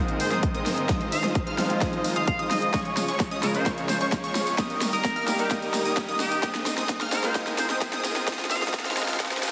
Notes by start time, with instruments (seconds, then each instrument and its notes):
Already playing: grand piano G#2 G#3 A#3 C4 D#4 F4, string section D#3 A#3 G#4 C5, supersaw synth G#3 C4 D#4 A#4 D#5, digital synth lead D#6, riser
0.08 closed hi-hat
0.20 muted trumpet C5, open hi-hat
0.31 supersaw synth G#3 C4 D#4 A#4 D#5, muted trumpet C5, digital synth lead D#6, snare, closed hi-hat
0.43 kick, closed hi-hat
0.55 supersaw synth G#3 C4 D#4 A#4 D#5, digital synth lead D#6, closed hi-hat
0.66 snare, open hi-hat
0.78 closed hi-hat
0.89 supersaw synth G#3 F4, string section G#3 F4, digital synth lead D#6, kick, snare, closed hi-hat
1.01 closed hi-hat
1.12 muted trumpet F5, open hi-hat
1.24 supersaw synth G#3 D#4 F4 C5 D#5, digital synth lead D#6, snare, closed hi-hat
1.35 kick, closed hi-hat
1.47 supersaw synth G#3 D#4 F4 C5 F5, digital synth lead F6, closed hi-hat
1.58 grand piano F3 G#3 C4 D#4, snare, open hi-hat
1.69 grand piano F3 G#3 C4 F4, closed hi-hat
1.81 supersaw synth G#3 D#4 F4 C5 D#5, digital synth lead D#6, kick, snare, closed hi-hat
1.93 closed hi-hat
2.04 open hi-hat
2.16 supersaw synth G#3 D#4 F4 C5 D#5, muted trumpet F5, digital synth lead D#6, closed hi-hat
2.28 muted trumpet F5, kick, closed hi-hat
2.39 supersaw synth G#3 D#4 F4 C5 D#5, digital synth lead D#6, closed hi-hat
2.51 muted trumpet D#5, snare, open hi-hat
2.62 closed hi-hat
2.74 string section C#3 C#5, supersaw synth F3 C#4 C#5, digital synth lead C#6, kick, snare, closed hi-hat, tambourine
2.85 closed hi-hat, tambourine
2.97 snare, open hi-hat, tambourine
3.08 supersaw synth F3 G#3 C#4 G#4 C#5, digital synth lead C#6, closed hi-hat, tambourine
3.20 kick, snare, closed hi-hat, tambourine
3.31 supersaw synth F3 G#3 C#4 G#4 D#5, digital synth lead D#6, closed hi-hat, tambourine
3.42 grand piano C#3 G#3 C#4 F4 G#4, muted trumpet A#4, snare, open hi-hat, tambourine
3.53 grand piano C#3 G#3 C#4 F4 A#4, muted trumpet C5, closed hi-hat, tambourine
3.66 supersaw synth F3 C#4 C#5, digital synth lead C#6, kick, snare, closed hi-hat, tambourine
3.78 closed hi-hat, tambourine
3.89 muted trumpet C5, snare, open hi-hat, tambourine
4.01 supersaw synth F3 G#3 C#4 G#4 C#5, muted trumpet C5, digital synth lead C#6, closed hi-hat, tambourine
4.12 kick, snare, closed hi-hat, tambourine
4.24 supersaw synth F3 G#3 C#4 G#4 C#5, digital synth lead C#6, closed hi-hat, tambourine
4.35 snare, open hi-hat, tambourine
4.47 closed hi-hat, tambourine
4.58 string section D#3 A#3 G4 A#4, supersaw synth G3 A#3 D#4 A#4, digital synth lead D#6, kick, snare, closed hi-hat, tambourine
4.70 closed hi-hat, tambourine
4.81 snare, open hi-hat, tambourine
4.93 supersaw synth G3 A#3 D#4 A#4 D#5, muted trumpet A#4, digital synth lead D#6, closed hi-hat, tambourine
5.05 kick, snare, closed hi-hat, tambourine
5.16 supersaw synth G3 A#3 D#4 A#4 F5, digital synth lead F6, closed hi-hat, tambourine
5.27 grand piano G3 A#3 D#4 G4, muted trumpet A#4, snare, open hi-hat, tambourine
5.38 grand piano G3 A#3 D#4 A#4, muted trumpet G4, closed hi-hat, tambourine
5.51 supersaw synth G3 A#3 D#4 A#4 D#5, digital synth lead D#6, kick, snare, closed hi-hat, tambourine
5.62 closed hi-hat, tambourine
5.74 snare, open hi-hat, tambourine
5.85 supersaw synth G3 A#3 D#4 A#4 D#5, digital synth lead D#6, closed hi-hat, tambourine
5.97 kick, snare, closed hi-hat, tambourine
6.08 supersaw synth G3 A#3 D#4 A#4 D#5, digital synth lead D#6, closed hi-hat, tambourine
6.20 muted trumpet G4, snare, open hi-hat, tambourine
6.32 closed hi-hat, tambourine
6.43 supersaw synth G#3 C4 D#4 A#4 D#5, string section A#3 G#4 C5, digital synth lead D#6, kick, snare, closed hi-hat, tambourine
6.55 snare, closed hi-hat, tambourine
6.66 snare, open hi-hat, tambourine
6.78 supersaw synth G#3 C4 D#4 A#4 D#5, digital synth lead D#6, snare, closed hi-hat, tambourine
6.89 kick, snare, closed hi-hat, tambourine
7.01 supersaw synth G#3 C4 D#4 A#4 F5, digital synth lead F6, snare, closed hi-hat, tambourine
7.12 grand piano G#2 G#3 A#3 C4 D#4, muted trumpet A#4, snare, open hi-hat, tambourine
7.22 grand piano G#2 G#3 A#3 C4 F4, muted trumpet C5, snare, closed hi-hat, tambourine
7.35 supersaw synth G#3 C4 D#4 A#4 D#5, digital synth lead D#6, kick, snare, closed hi-hat, tambourine
7.47 snare, closed hi-hat, tambourine
7.58 muted trumpet C5, snare, open hi-hat, tambourine
7.70 supersaw synth G#3 C4 D#4 A#4 D#5, muted trumpet C5, digital synth lead D#6, snare, closed hi-hat, tambourine
7.81 kick, snare, closed hi-hat, tambourine
7.93 supersaw synth G#3 C4 D#4 A#4 D#5, digital synth lead D#6, snare, closed hi-hat, tambourine
8.05 snare, open hi-hat, tambourine
8.16 snare, closed hi-hat, tambourine
8.28 supersaw synth G#3 F4, string section G#3 F4, digital synth lead D#6, kick, snare, closed hi-hat, tambourine
8.33 snare
8.39 snare, closed hi-hat, tambourine
8.45 snare
8.51 muted trumpet F5, snare, open hi-hat, tambourine
8.56 snare
8.62 supersaw synth G#3 D#4 F4 C5 D#5, digital synth lead D#6, snare, closed hi-hat, tambourine
8.68 snare
8.74 kick, snare, closed hi-hat, tambourine
8.80 snare
8.85 supersaw synth G#3 D#4 F4 C5 F5, digital synth lead F6, snare, closed hi-hat, tambourine
8.91 snare
8.96 grand piano F3 G#3 C4 D#4, snare, open hi-hat, tambourine
9.03 snare
9.07 grand piano F3 G#3 C4 F4, snare, closed hi-hat, tambourine
9.14 snare
9.20 supersaw synth G#3 D#4 F4 C5 D#5, digital synth lead D#6, kick, snare, closed hi-hat, tambourine
9.26 snare
9.31 snare, closed hi-hat, tambourine
9.37 snare
9.43 snare, open hi-hat, tambourine